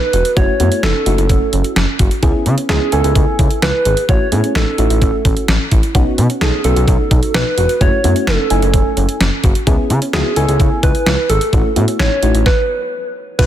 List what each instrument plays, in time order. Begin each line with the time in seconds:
Already playing: soft synth lead B4
0.13 analog synth bass E1, synth arpeggio sound F#4, closed hi-hat
0.25 closed hi-hat
0.36 analog synth bass F#1, fm electric piano A3 C#4 E4 F#4, synth arpeggio sound F#4, soft synth lead C#5, kick, closed hi-hat
0.60 analog synth bass F#2, fm electric piano A3 C#4 E4 F#4, synth arpeggio sound B3, closed hi-hat
0.72 synth arpeggio sound C#4, closed hi-hat
0.83 analog synth bass F#1, synth arpeggio sound D#4, soft synth lead A4, snare, closed hi-hat
0.95 synth arpeggio sound C#4
1.06 analog synth bass F#1, fm electric piano A3 C#4 E4 F#4, synth arpeggio sound D#4, closed hi-hat
1.18 analog synth bass F#1, synth arpeggio sound E4, closed hi-hat
1.29 analog synth bass F#1, synth arpeggio sound C#4, kick, closed hi-hat
1.53 analog synth bass F#1, synth arpeggio sound C#4, closed hi-hat
1.64 closed hi-hat
1.76 analog synth bass F#1, synth arpeggio sound C#4, snare, closed hi-hat
1.99 analog synth bass F#1, synth arpeggio sound F#4, kick, closed hi-hat
2.11 closed hi-hat
2.23 analog synth bass C#2, fm electric piano B3 C#4 E4 G#4, synth arpeggio sound E4, kick, closed hi-hat
2.46 analog synth bass C#3, synth arpeggio sound B3, closed hi-hat
2.58 synth arpeggio sound C#4, closed hi-hat
2.69 analog synth bass C#2, fm electric piano B3 C#4 E4 G#4, synth arpeggio sound D#4, soft synth lead G#4, snare, closed hi-hat
2.81 synth arpeggio sound C#4
2.92 analog synth bass C#2, fm electric piano B3 C#4 E4 G#5, synth arpeggio sound E4, soft synth lead A4, closed hi-hat
3.04 analog synth bass C#2, synth arpeggio sound G#4, closed hi-hat
3.15 analog synth bass C#2, synth arpeggio sound E4, kick, closed hi-hat
3.39 analog synth bass C#2, synth arpeggio sound E4, kick, closed hi-hat
3.50 closed hi-hat
3.62 analog synth bass C#2, synth arpeggio sound E4, soft synth lead B4, snare, closed hi-hat
3.85 analog synth bass G#1, synth arpeggio sound G#4, closed hi-hat
3.97 closed hi-hat
4.09 analog synth bass A1, fm electric piano A3 C#4 E4 F#4, synth arpeggio sound F#4, soft synth lead C#5, kick, closed hi-hat
4.32 analog synth bass A2, fm electric piano A3 C#4 E4 G#4, synth arpeggio sound B3, closed hi-hat
4.44 synth arpeggio sound C#4, closed hi-hat
4.55 analog synth bass A1, synth arpeggio sound D#4, soft synth lead A4, snare, closed hi-hat
4.67 synth arpeggio sound C#4
4.78 analog synth bass A1, fm electric piano A3 C#4 E4 F#4, synth arpeggio sound D#4, closed hi-hat
4.90 analog synth bass A1, synth arpeggio sound E4, closed hi-hat
5.02 analog synth bass A1, synth arpeggio sound C#4, kick, closed hi-hat
5.25 analog synth bass A1, synth arpeggio sound C#4, kick, closed hi-hat
5.37 closed hi-hat
5.48 analog synth bass A1, synth arpeggio sound C#4, snare, closed hi-hat
5.71 analog synth bass A1, synth arpeggio sound E4, kick, closed hi-hat
5.83 closed hi-hat
5.95 analog synth bass B1, fm electric piano B3 C#4 D#4 F#4, synth arpeggio sound F#4, kick, closed hi-hat
6.18 analog synth bass B2, synth arpeggio sound B3, closed hi-hat
6.30 synth arpeggio sound C#4, closed hi-hat
6.41 analog synth bass B1, fm electric piano B3 C#4 D#4 A4, soft synth lead G#4, snare, closed hi-hat
6.53 synth arpeggio sound C#4
6.64 analog synth bass B1, fm electric piano B3 C#4 D#4 F#4, synth arpeggio sound D#4, soft synth lead A4, closed hi-hat
6.76 analog synth bass B1, synth arpeggio sound F#4, closed hi-hat
6.88 analog synth bass B1, synth arpeggio sound D#4, kick, closed hi-hat
7.11 analog synth bass B1, synth arpeggio sound D#4, kick, closed hi-hat
7.23 closed hi-hat
7.34 analog synth bass B1, synth arpeggio sound D#4, soft synth lead B4, snare, closed hi-hat
7.58 analog synth bass E1, synth arpeggio sound F#4, closed hi-hat
7.69 closed hi-hat
7.81 analog synth bass F#1, fm electric piano A3 C#4 E4 F#4, synth arpeggio sound F#4, soft synth lead C#5, kick, closed hi-hat
8.04 analog synth bass F#2, fm electric piano A3 C#4 E4 F#4, synth arpeggio sound B3, closed hi-hat
8.16 synth arpeggio sound C#4, closed hi-hat
8.27 analog synth bass F#1, soft synth lead A4, snare, closed hi-hat
8.39 synth arpeggio sound C#4
8.50 analog synth bass F#1, fm electric piano A3 C#4 E4 G#5, synth arpeggio sound D#4, closed hi-hat
8.62 analog synth bass F#1, synth arpeggio sound E4, closed hi-hat
8.74 analog synth bass F#1, synth arpeggio sound C#4, kick, closed hi-hat
8.97 analog synth bass F#1, synth arpeggio sound C#4, closed hi-hat
9.09 closed hi-hat
9.20 analog synth bass F#1, synth arpeggio sound C#4, snare, closed hi-hat
9.44 analog synth bass F#1, synth arpeggio sound F#4, kick, closed hi-hat
9.55 closed hi-hat
9.67 analog synth bass C#2, fm electric piano B3 C#4 E4 G#4, synth arpeggio sound E4, kick, closed hi-hat
9.90 analog synth bass C#3, synth arpeggio sound B3, closed hi-hat
10.02 synth arpeggio sound C#4, closed hi-hat
10.13 analog synth bass C#2, fm electric piano B3 C#4 E4 F#4, synth arpeggio sound D#4, soft synth lead G#4, snare, closed hi-hat
10.25 synth arpeggio sound C#4
10.36 analog synth bass C#2, fm electric piano B3 C#4 E4 G#5, synth arpeggio sound E4, soft synth lead A4, closed hi-hat
10.48 analog synth bass C#2, synth arpeggio sound G#4, closed hi-hat
10.60 analog synth bass C#2, synth arpeggio sound E4, kick, closed hi-hat
10.83 analog synth bass C#2, synth arpeggio sound E4, soft synth lead B4, kick, closed hi-hat
10.95 closed hi-hat
11.06 analog synth bass C#2, synth arpeggio sound E4, snare, closed hi-hat
11.30 analog synth bass G#1, synth arpeggio sound G#4, soft synth lead A4, closed hi-hat
11.41 closed hi-hat
11.53 analog synth bass A1, fm electric piano A3 C#4 E4 F#4, synth arpeggio sound F#4, kick, closed hi-hat
11.76 analog synth bass A2, fm electric piano A3 C#4 E4 F#4, synth arpeggio sound B3, closed hi-hat
11.88 synth arpeggio sound C#4, closed hi-hat
11.99 analog synth bass A1, synth arpeggio sound D#4, soft synth lead C#5, snare, closed hi-hat
12.11 synth arpeggio sound C#4
12.23 analog synth bass A1, fm electric piano A3 C#4 E4 F#4, synth arpeggio sound D#4, closed hi-hat
12.34 analog synth bass A1, synth arpeggio sound E4, closed hi-hat
12.46 soft synth lead B4, kick, snare
13.39 analog synth bass B1, fm electric piano F#3 B3 D#4 F#4 B4, synth arpeggio sound F#4, soft synth lead B4, kick, closed hi-hat, crash